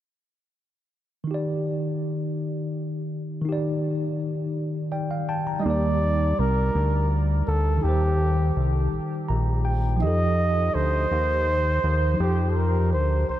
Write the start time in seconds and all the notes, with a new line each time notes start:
1.24 D#3 D#4
1.31 G4 D5
3.42 D#3 D#4
3.49 G4 D5
4.92 D5 G5
5.11 F5
5.29 G5 A5
5.47 A#5
5.59 G3 D#4 D#5
5.65 D#2 G4 D5
5.70 D5
6.39 C2 A#4
6.75 D2
7.48 D2 A4
7.78 D#3 D#4
7.83 D#2 G4
7.89 C5
8.57 C2
8.93 A#1
9.29 A#1 A#5
9.65 G5
9.97 F3 D#4
10.02 F2 G4 D#5
10.07 A4
10.74 D2 C5
11.11 D#2
11.84 D#2
12.14 F3 D#4
12.20 F2 G4 C5
12.50 A4
12.56 A#4
12.93 D2 C5
13.29 C2 C5